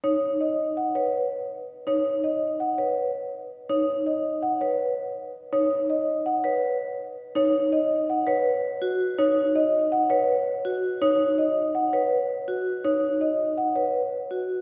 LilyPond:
<<
  \new Staff \with { instrumentName = "Marimba" } { \time 5/4 \key dis \phrygian \tempo 4 = 164 cis''8 r8 dis''8 r8 fis''8 cis''8 r2 | cis''8 r8 dis''8 r8 fis''8 cis''8 r2 | cis''8 r8 dis''8 r8 fis''8 cis''8 r2 | cis''8 r8 dis''8 r8 fis''8 cis''8 r2 |
cis''8 r8 dis''8 r8 fis''8 cis''8 r2 | cis''8 r8 dis''8 r8 fis''8 cis''8 r2 | cis''8 r8 dis''8 r8 fis''8 cis''8 r2 | cis''8 r8 dis''8 r8 fis''8 cis''8 r2 | }
  \new Staff \with { instrumentName = "Vibraphone" } { \time 5/4 \key dis \phrygian dis'8 r2 b'8 r2 | dis'8 r2 b'8 r2 | dis'8 r2 b'8 r2 | dis'8 r2 b'8 r2 |
dis'8 r2 b'8 r4 fis'8 r8 | dis'8 r2 b'8 r4 fis'8 r8 | dis'8 r2 b'8 r4 fis'8 r8 | dis'8 r2 b'8 r4 fis'8 r8 | }
>>